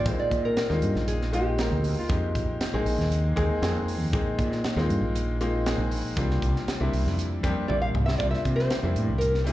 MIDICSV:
0, 0, Header, 1, 6, 480
1, 0, Start_track
1, 0, Tempo, 508475
1, 59, Time_signature, 4, 2, 24, 8
1, 8991, End_track
2, 0, Start_track
2, 0, Title_t, "Nylon-string guitar"
2, 0, Program_c, 0, 24
2, 56, Note_on_c, 0, 72, 82
2, 180, Note_off_c, 0, 72, 0
2, 184, Note_on_c, 0, 74, 82
2, 425, Note_on_c, 0, 70, 83
2, 430, Note_off_c, 0, 74, 0
2, 1017, Note_off_c, 0, 70, 0
2, 1020, Note_on_c, 0, 68, 72
2, 1265, Note_off_c, 0, 68, 0
2, 1268, Note_on_c, 0, 67, 76
2, 1877, Note_on_c, 0, 65, 60
2, 1887, Note_off_c, 0, 67, 0
2, 2554, Note_off_c, 0, 65, 0
2, 7251, Note_on_c, 0, 74, 84
2, 7375, Note_off_c, 0, 74, 0
2, 7378, Note_on_c, 0, 77, 79
2, 7444, Note_off_c, 0, 77, 0
2, 7607, Note_on_c, 0, 76, 81
2, 7719, Note_off_c, 0, 76, 0
2, 7723, Note_on_c, 0, 74, 85
2, 7838, Note_off_c, 0, 74, 0
2, 7841, Note_on_c, 0, 76, 81
2, 8078, Note_on_c, 0, 72, 88
2, 8101, Note_off_c, 0, 76, 0
2, 8650, Note_off_c, 0, 72, 0
2, 8669, Note_on_c, 0, 70, 79
2, 8906, Note_off_c, 0, 70, 0
2, 8912, Note_on_c, 0, 69, 75
2, 8991, Note_off_c, 0, 69, 0
2, 8991, End_track
3, 0, Start_track
3, 0, Title_t, "Grand piano"
3, 0, Program_c, 1, 0
3, 54, Note_on_c, 1, 58, 55
3, 55, Note_on_c, 1, 56, 59
3, 55, Note_on_c, 1, 63, 54
3, 56, Note_on_c, 1, 60, 55
3, 58, Note_on_c, 1, 65, 66
3, 624, Note_off_c, 1, 56, 0
3, 624, Note_off_c, 1, 58, 0
3, 624, Note_off_c, 1, 63, 0
3, 625, Note_off_c, 1, 60, 0
3, 626, Note_off_c, 1, 65, 0
3, 655, Note_on_c, 1, 60, 63
3, 656, Note_on_c, 1, 56, 65
3, 657, Note_on_c, 1, 58, 65
3, 657, Note_on_c, 1, 63, 61
3, 657, Note_on_c, 1, 65, 79
3, 1222, Note_off_c, 1, 56, 0
3, 1222, Note_off_c, 1, 60, 0
3, 1222, Note_off_c, 1, 65, 0
3, 1223, Note_off_c, 1, 58, 0
3, 1223, Note_off_c, 1, 63, 0
3, 1251, Note_on_c, 1, 56, 70
3, 1251, Note_on_c, 1, 60, 61
3, 1252, Note_on_c, 1, 58, 68
3, 1255, Note_on_c, 1, 65, 79
3, 1259, Note_on_c, 1, 63, 63
3, 1482, Note_off_c, 1, 56, 0
3, 1482, Note_off_c, 1, 60, 0
3, 1483, Note_off_c, 1, 58, 0
3, 1484, Note_off_c, 1, 65, 0
3, 1485, Note_off_c, 1, 63, 0
3, 1499, Note_on_c, 1, 56, 62
3, 1499, Note_on_c, 1, 63, 63
3, 1500, Note_on_c, 1, 60, 62
3, 1502, Note_on_c, 1, 58, 60
3, 1502, Note_on_c, 1, 70, 76
3, 1953, Note_off_c, 1, 56, 0
3, 1953, Note_off_c, 1, 60, 0
3, 1953, Note_off_c, 1, 63, 0
3, 1954, Note_off_c, 1, 58, 0
3, 1954, Note_off_c, 1, 70, 0
3, 1973, Note_on_c, 1, 58, 55
3, 1973, Note_on_c, 1, 60, 56
3, 1974, Note_on_c, 1, 56, 58
3, 1974, Note_on_c, 1, 63, 54
3, 1979, Note_on_c, 1, 67, 64
3, 2545, Note_off_c, 1, 56, 0
3, 2545, Note_off_c, 1, 58, 0
3, 2545, Note_off_c, 1, 60, 0
3, 2545, Note_off_c, 1, 63, 0
3, 2548, Note_off_c, 1, 67, 0
3, 2584, Note_on_c, 1, 56, 83
3, 2584, Note_on_c, 1, 58, 70
3, 2586, Note_on_c, 1, 60, 75
3, 2586, Note_on_c, 1, 63, 80
3, 2586, Note_on_c, 1, 68, 92
3, 3148, Note_off_c, 1, 56, 0
3, 3148, Note_off_c, 1, 58, 0
3, 3149, Note_off_c, 1, 60, 0
3, 3149, Note_off_c, 1, 63, 0
3, 3149, Note_off_c, 1, 68, 0
3, 3173, Note_on_c, 1, 56, 90
3, 3174, Note_on_c, 1, 58, 81
3, 3174, Note_on_c, 1, 68, 93
3, 3175, Note_on_c, 1, 63, 78
3, 3179, Note_on_c, 1, 60, 78
3, 3404, Note_off_c, 1, 56, 0
3, 3405, Note_off_c, 1, 58, 0
3, 3405, Note_off_c, 1, 60, 0
3, 3405, Note_off_c, 1, 63, 0
3, 3405, Note_off_c, 1, 68, 0
3, 3418, Note_on_c, 1, 56, 83
3, 3420, Note_on_c, 1, 60, 69
3, 3421, Note_on_c, 1, 58, 68
3, 3423, Note_on_c, 1, 68, 90
3, 3424, Note_on_c, 1, 63, 74
3, 3874, Note_off_c, 1, 56, 0
3, 3874, Note_off_c, 1, 60, 0
3, 3875, Note_off_c, 1, 58, 0
3, 3876, Note_off_c, 1, 63, 0
3, 3876, Note_off_c, 1, 68, 0
3, 3896, Note_on_c, 1, 56, 74
3, 3899, Note_on_c, 1, 58, 68
3, 3900, Note_on_c, 1, 60, 69
3, 3902, Note_on_c, 1, 68, 74
3, 3903, Note_on_c, 1, 63, 65
3, 4467, Note_off_c, 1, 56, 0
3, 4468, Note_off_c, 1, 58, 0
3, 4469, Note_off_c, 1, 60, 0
3, 4470, Note_off_c, 1, 68, 0
3, 4471, Note_off_c, 1, 63, 0
3, 4503, Note_on_c, 1, 58, 76
3, 4505, Note_on_c, 1, 56, 82
3, 4505, Note_on_c, 1, 60, 76
3, 4506, Note_on_c, 1, 63, 76
3, 4506, Note_on_c, 1, 65, 87
3, 5068, Note_off_c, 1, 56, 0
3, 5068, Note_off_c, 1, 58, 0
3, 5069, Note_off_c, 1, 60, 0
3, 5069, Note_off_c, 1, 63, 0
3, 5069, Note_off_c, 1, 65, 0
3, 5104, Note_on_c, 1, 56, 81
3, 5104, Note_on_c, 1, 58, 78
3, 5105, Note_on_c, 1, 60, 78
3, 5105, Note_on_c, 1, 65, 95
3, 5110, Note_on_c, 1, 63, 77
3, 5331, Note_off_c, 1, 56, 0
3, 5331, Note_off_c, 1, 58, 0
3, 5331, Note_off_c, 1, 60, 0
3, 5331, Note_off_c, 1, 65, 0
3, 5332, Note_off_c, 1, 63, 0
3, 5345, Note_on_c, 1, 56, 80
3, 5346, Note_on_c, 1, 63, 73
3, 5347, Note_on_c, 1, 58, 70
3, 5348, Note_on_c, 1, 60, 77
3, 5348, Note_on_c, 1, 68, 90
3, 5797, Note_off_c, 1, 56, 0
3, 5797, Note_off_c, 1, 63, 0
3, 5798, Note_off_c, 1, 58, 0
3, 5798, Note_off_c, 1, 68, 0
3, 5799, Note_off_c, 1, 60, 0
3, 5820, Note_on_c, 1, 55, 73
3, 5822, Note_on_c, 1, 62, 67
3, 5823, Note_on_c, 1, 60, 64
3, 5824, Note_on_c, 1, 58, 61
3, 5828, Note_on_c, 1, 65, 77
3, 6389, Note_off_c, 1, 55, 0
3, 6390, Note_off_c, 1, 60, 0
3, 6390, Note_off_c, 1, 62, 0
3, 6391, Note_off_c, 1, 58, 0
3, 6392, Note_off_c, 1, 65, 0
3, 6421, Note_on_c, 1, 55, 79
3, 6424, Note_on_c, 1, 58, 69
3, 6424, Note_on_c, 1, 62, 71
3, 6426, Note_on_c, 1, 60, 71
3, 6429, Note_on_c, 1, 64, 91
3, 6986, Note_off_c, 1, 55, 0
3, 6987, Note_off_c, 1, 58, 0
3, 6987, Note_off_c, 1, 62, 0
3, 6988, Note_off_c, 1, 60, 0
3, 6990, Note_off_c, 1, 64, 0
3, 7016, Note_on_c, 1, 55, 91
3, 7016, Note_on_c, 1, 60, 75
3, 7018, Note_on_c, 1, 62, 78
3, 7019, Note_on_c, 1, 58, 76
3, 7021, Note_on_c, 1, 67, 96
3, 7241, Note_off_c, 1, 55, 0
3, 7241, Note_off_c, 1, 58, 0
3, 7244, Note_off_c, 1, 60, 0
3, 7245, Note_off_c, 1, 62, 0
3, 7248, Note_off_c, 1, 67, 0
3, 7255, Note_on_c, 1, 55, 68
3, 7255, Note_on_c, 1, 58, 57
3, 7258, Note_on_c, 1, 60, 59
3, 7259, Note_on_c, 1, 62, 60
3, 7260, Note_on_c, 1, 64, 74
3, 7711, Note_off_c, 1, 55, 0
3, 7711, Note_off_c, 1, 58, 0
3, 7712, Note_off_c, 1, 60, 0
3, 7713, Note_off_c, 1, 62, 0
3, 7713, Note_off_c, 1, 64, 0
3, 7736, Note_on_c, 1, 58, 55
3, 7739, Note_on_c, 1, 55, 58
3, 7741, Note_on_c, 1, 60, 53
3, 7743, Note_on_c, 1, 65, 66
3, 7744, Note_on_c, 1, 62, 50
3, 8305, Note_off_c, 1, 58, 0
3, 8306, Note_off_c, 1, 55, 0
3, 8308, Note_off_c, 1, 60, 0
3, 8308, Note_off_c, 1, 65, 0
3, 8309, Note_off_c, 1, 62, 0
3, 8339, Note_on_c, 1, 55, 66
3, 8340, Note_on_c, 1, 58, 62
3, 8340, Note_on_c, 1, 62, 59
3, 8341, Note_on_c, 1, 64, 76
3, 8342, Note_on_c, 1, 60, 58
3, 8903, Note_off_c, 1, 55, 0
3, 8903, Note_off_c, 1, 58, 0
3, 8903, Note_off_c, 1, 62, 0
3, 8904, Note_off_c, 1, 60, 0
3, 8904, Note_off_c, 1, 64, 0
3, 8926, Note_on_c, 1, 55, 70
3, 8931, Note_on_c, 1, 60, 64
3, 8933, Note_on_c, 1, 58, 67
3, 8934, Note_on_c, 1, 64, 83
3, 8936, Note_on_c, 1, 62, 63
3, 8991, Note_off_c, 1, 55, 0
3, 8991, Note_off_c, 1, 58, 0
3, 8991, Note_off_c, 1, 60, 0
3, 8991, Note_off_c, 1, 62, 0
3, 8991, Note_off_c, 1, 64, 0
3, 8991, End_track
4, 0, Start_track
4, 0, Title_t, "Fretless electric bass"
4, 0, Program_c, 2, 35
4, 53, Note_on_c, 2, 34, 87
4, 168, Note_off_c, 2, 34, 0
4, 293, Note_on_c, 2, 46, 86
4, 513, Note_off_c, 2, 46, 0
4, 660, Note_on_c, 2, 39, 78
4, 767, Note_off_c, 2, 39, 0
4, 775, Note_on_c, 2, 43, 76
4, 898, Note_on_c, 2, 34, 74
4, 912, Note_off_c, 2, 43, 0
4, 1584, Note_off_c, 2, 34, 0
4, 1620, Note_on_c, 2, 38, 83
4, 1840, Note_off_c, 2, 38, 0
4, 1976, Note_on_c, 2, 41, 82
4, 2197, Note_off_c, 2, 41, 0
4, 2219, Note_on_c, 2, 34, 74
4, 2333, Note_off_c, 2, 34, 0
4, 2583, Note_on_c, 2, 34, 68
4, 2688, Note_off_c, 2, 34, 0
4, 2693, Note_on_c, 2, 34, 66
4, 2810, Note_off_c, 2, 34, 0
4, 2818, Note_on_c, 2, 39, 75
4, 3145, Note_off_c, 2, 39, 0
4, 3181, Note_on_c, 2, 39, 74
4, 3294, Note_off_c, 2, 39, 0
4, 3417, Note_on_c, 2, 41, 83
4, 3783, Note_off_c, 2, 41, 0
4, 3783, Note_on_c, 2, 39, 68
4, 3891, Note_off_c, 2, 39, 0
4, 3900, Note_on_c, 2, 34, 85
4, 4014, Note_off_c, 2, 34, 0
4, 4140, Note_on_c, 2, 46, 87
4, 4360, Note_off_c, 2, 46, 0
4, 4496, Note_on_c, 2, 39, 80
4, 4607, Note_off_c, 2, 39, 0
4, 4614, Note_on_c, 2, 43, 78
4, 4732, Note_on_c, 2, 34, 77
4, 4746, Note_off_c, 2, 43, 0
4, 5422, Note_off_c, 2, 34, 0
4, 5456, Note_on_c, 2, 34, 77
4, 5679, Note_off_c, 2, 34, 0
4, 5825, Note_on_c, 2, 36, 83
4, 6042, Note_off_c, 2, 36, 0
4, 6062, Note_on_c, 2, 36, 78
4, 6175, Note_off_c, 2, 36, 0
4, 6424, Note_on_c, 2, 36, 68
4, 6532, Note_off_c, 2, 36, 0
4, 6543, Note_on_c, 2, 36, 63
4, 6655, Note_off_c, 2, 36, 0
4, 6664, Note_on_c, 2, 41, 73
4, 6989, Note_off_c, 2, 41, 0
4, 7020, Note_on_c, 2, 41, 82
4, 7134, Note_off_c, 2, 41, 0
4, 7258, Note_on_c, 2, 34, 68
4, 7476, Note_off_c, 2, 34, 0
4, 7497, Note_on_c, 2, 36, 72
4, 7716, Note_off_c, 2, 36, 0
4, 7740, Note_on_c, 2, 36, 94
4, 7853, Note_off_c, 2, 36, 0
4, 7977, Note_on_c, 2, 48, 89
4, 8197, Note_off_c, 2, 48, 0
4, 8338, Note_on_c, 2, 41, 81
4, 8447, Note_off_c, 2, 41, 0
4, 8459, Note_on_c, 2, 45, 79
4, 8579, Note_on_c, 2, 36, 72
4, 8593, Note_off_c, 2, 45, 0
4, 8991, Note_off_c, 2, 36, 0
4, 8991, End_track
5, 0, Start_track
5, 0, Title_t, "Muted fretless electric bass strokes"
5, 2459, Note_on_c, 9, 29, 30
5, 2553, Note_off_c, 9, 29, 0
5, 6304, Note_on_c, 9, 29, 30
5, 6399, Note_off_c, 9, 29, 0
5, 8991, End_track
6, 0, Start_track
6, 0, Title_t, "Drums"
6, 53, Note_on_c, 9, 42, 71
6, 55, Note_on_c, 9, 36, 102
6, 148, Note_off_c, 9, 42, 0
6, 149, Note_off_c, 9, 36, 0
6, 297, Note_on_c, 9, 36, 66
6, 299, Note_on_c, 9, 42, 46
6, 391, Note_off_c, 9, 36, 0
6, 393, Note_off_c, 9, 42, 0
6, 536, Note_on_c, 9, 42, 67
6, 539, Note_on_c, 9, 38, 90
6, 631, Note_off_c, 9, 42, 0
6, 634, Note_off_c, 9, 38, 0
6, 661, Note_on_c, 9, 38, 28
6, 755, Note_off_c, 9, 38, 0
6, 774, Note_on_c, 9, 42, 52
6, 868, Note_off_c, 9, 42, 0
6, 904, Note_on_c, 9, 38, 30
6, 998, Note_off_c, 9, 38, 0
6, 1018, Note_on_c, 9, 42, 76
6, 1113, Note_off_c, 9, 42, 0
6, 1148, Note_on_c, 9, 38, 32
6, 1242, Note_off_c, 9, 38, 0
6, 1258, Note_on_c, 9, 42, 57
6, 1353, Note_off_c, 9, 42, 0
6, 1497, Note_on_c, 9, 42, 75
6, 1500, Note_on_c, 9, 38, 90
6, 1592, Note_off_c, 9, 42, 0
6, 1594, Note_off_c, 9, 38, 0
6, 1737, Note_on_c, 9, 46, 64
6, 1832, Note_off_c, 9, 46, 0
6, 1977, Note_on_c, 9, 42, 80
6, 1979, Note_on_c, 9, 36, 96
6, 2072, Note_off_c, 9, 42, 0
6, 2073, Note_off_c, 9, 36, 0
6, 2220, Note_on_c, 9, 36, 66
6, 2222, Note_on_c, 9, 42, 56
6, 2315, Note_off_c, 9, 36, 0
6, 2317, Note_off_c, 9, 42, 0
6, 2461, Note_on_c, 9, 42, 72
6, 2464, Note_on_c, 9, 38, 95
6, 2556, Note_off_c, 9, 42, 0
6, 2558, Note_off_c, 9, 38, 0
6, 2702, Note_on_c, 9, 46, 64
6, 2796, Note_off_c, 9, 46, 0
6, 2834, Note_on_c, 9, 38, 28
6, 2928, Note_off_c, 9, 38, 0
6, 2943, Note_on_c, 9, 42, 72
6, 3037, Note_off_c, 9, 42, 0
6, 3182, Note_on_c, 9, 36, 73
6, 3185, Note_on_c, 9, 42, 56
6, 3276, Note_off_c, 9, 36, 0
6, 3279, Note_off_c, 9, 42, 0
6, 3424, Note_on_c, 9, 42, 70
6, 3427, Note_on_c, 9, 38, 94
6, 3519, Note_off_c, 9, 42, 0
6, 3522, Note_off_c, 9, 38, 0
6, 3666, Note_on_c, 9, 46, 66
6, 3760, Note_off_c, 9, 46, 0
6, 3901, Note_on_c, 9, 42, 68
6, 3902, Note_on_c, 9, 36, 105
6, 3995, Note_off_c, 9, 42, 0
6, 3996, Note_off_c, 9, 36, 0
6, 4141, Note_on_c, 9, 36, 68
6, 4143, Note_on_c, 9, 42, 50
6, 4235, Note_off_c, 9, 36, 0
6, 4237, Note_off_c, 9, 42, 0
6, 4269, Note_on_c, 9, 38, 29
6, 4363, Note_off_c, 9, 38, 0
6, 4383, Note_on_c, 9, 42, 66
6, 4385, Note_on_c, 9, 38, 95
6, 4477, Note_off_c, 9, 42, 0
6, 4480, Note_off_c, 9, 38, 0
6, 4512, Note_on_c, 9, 38, 30
6, 4606, Note_off_c, 9, 38, 0
6, 4627, Note_on_c, 9, 42, 53
6, 4722, Note_off_c, 9, 42, 0
6, 4866, Note_on_c, 9, 42, 75
6, 4961, Note_off_c, 9, 42, 0
6, 5105, Note_on_c, 9, 42, 53
6, 5200, Note_off_c, 9, 42, 0
6, 5345, Note_on_c, 9, 42, 75
6, 5348, Note_on_c, 9, 38, 96
6, 5440, Note_off_c, 9, 42, 0
6, 5443, Note_off_c, 9, 38, 0
6, 5583, Note_on_c, 9, 46, 66
6, 5678, Note_off_c, 9, 46, 0
6, 5823, Note_on_c, 9, 36, 104
6, 5826, Note_on_c, 9, 42, 84
6, 5917, Note_off_c, 9, 36, 0
6, 5920, Note_off_c, 9, 42, 0
6, 5953, Note_on_c, 9, 38, 29
6, 6047, Note_off_c, 9, 38, 0
6, 6063, Note_on_c, 9, 36, 67
6, 6070, Note_on_c, 9, 42, 56
6, 6158, Note_off_c, 9, 36, 0
6, 6164, Note_off_c, 9, 42, 0
6, 6195, Note_on_c, 9, 38, 30
6, 6289, Note_off_c, 9, 38, 0
6, 6306, Note_on_c, 9, 42, 67
6, 6309, Note_on_c, 9, 38, 89
6, 6401, Note_off_c, 9, 42, 0
6, 6404, Note_off_c, 9, 38, 0
6, 6545, Note_on_c, 9, 46, 63
6, 6640, Note_off_c, 9, 46, 0
6, 6672, Note_on_c, 9, 38, 29
6, 6766, Note_off_c, 9, 38, 0
6, 6785, Note_on_c, 9, 42, 72
6, 6879, Note_off_c, 9, 42, 0
6, 7022, Note_on_c, 9, 36, 70
6, 7025, Note_on_c, 9, 42, 58
6, 7116, Note_off_c, 9, 36, 0
6, 7120, Note_off_c, 9, 42, 0
6, 7266, Note_on_c, 9, 48, 53
6, 7361, Note_off_c, 9, 48, 0
6, 7503, Note_on_c, 9, 45, 67
6, 7597, Note_off_c, 9, 45, 0
6, 7630, Note_on_c, 9, 38, 69
6, 7725, Note_off_c, 9, 38, 0
6, 7740, Note_on_c, 9, 36, 98
6, 7742, Note_on_c, 9, 42, 66
6, 7835, Note_off_c, 9, 36, 0
6, 7836, Note_off_c, 9, 42, 0
6, 7869, Note_on_c, 9, 38, 29
6, 7964, Note_off_c, 9, 38, 0
6, 7980, Note_on_c, 9, 36, 63
6, 7980, Note_on_c, 9, 42, 51
6, 8074, Note_off_c, 9, 36, 0
6, 8075, Note_off_c, 9, 42, 0
6, 8111, Note_on_c, 9, 38, 30
6, 8205, Note_off_c, 9, 38, 0
6, 8217, Note_on_c, 9, 42, 67
6, 8220, Note_on_c, 9, 38, 94
6, 8311, Note_off_c, 9, 42, 0
6, 8314, Note_off_c, 9, 38, 0
6, 8459, Note_on_c, 9, 42, 54
6, 8553, Note_off_c, 9, 42, 0
6, 8694, Note_on_c, 9, 42, 67
6, 8789, Note_off_c, 9, 42, 0
6, 8822, Note_on_c, 9, 38, 30
6, 8916, Note_off_c, 9, 38, 0
6, 8936, Note_on_c, 9, 42, 54
6, 8991, Note_off_c, 9, 42, 0
6, 8991, End_track
0, 0, End_of_file